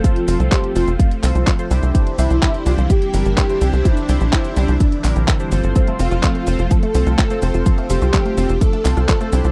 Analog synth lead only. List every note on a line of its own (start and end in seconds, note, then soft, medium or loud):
0.04 0.53 F4 loud
0.52 0.77 G4 loud
0.76 1.71 F4 medium
2.18 2.67 E4 loud
2.66 2.91 F4 loud
2.90 3.37 G4 loud
3.37 3.87 G4 loud
3.85 4.32 D4 loud
4.33 4.55 E4 medium
4.57 5.22 D4 medium
5.22 5.48 C4 medium
5.99 6.72 F4 loud
6.71 7.18 A4 loud
7.18 7.63 A4 loud
7.90 8.57 G4 loud
8.62 9.06 A4 loud
9.09 9.52 A4 loud